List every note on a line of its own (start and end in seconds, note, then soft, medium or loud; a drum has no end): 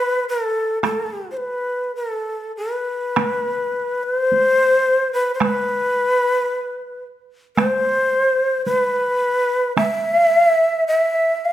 0.00 0.25 B4 loud
0.29 0.79 A4 medium
0.83 1.28 A4 medium
0.83 taiko rim medium
0.83 taiko high medium
1.31 1.39 C5 medium
1.37 1.95 B4 medium
1.96 2.52 A4 medium
2.57 4.05 B4 medium
3.17 taiko rim medium
3.17 taiko high medium
4.04 5.13 C5 loud
4.32 taiko high soft
5.13 5.32 B4 medium
5.34 5.41 C5 medium
5.40 7.03 B4 loud
5.40 taiko rim medium
5.40 taiko high medium
7.56 8.62 C5 loud
7.56 taiko rim medium
7.56 taiko high medium
8.66 9.73 B4 loud
8.66 taiko high soft
9.77 10.84 E5 loud
9.77 taiko rim medium
9.77 taiko high medium
10.88 11.47 E5 medium
11.45 11.53 F5 medium